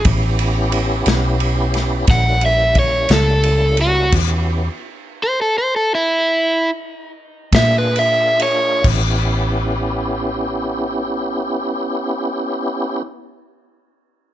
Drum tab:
CC |------------|x-----------|x-----------|
RD |xxxxxxxxxxxx|x--------xxx|------------|
SD |---o-oo--o--|---------o--|------------|
BD |o-----o-o---|o--------o--|o-----------|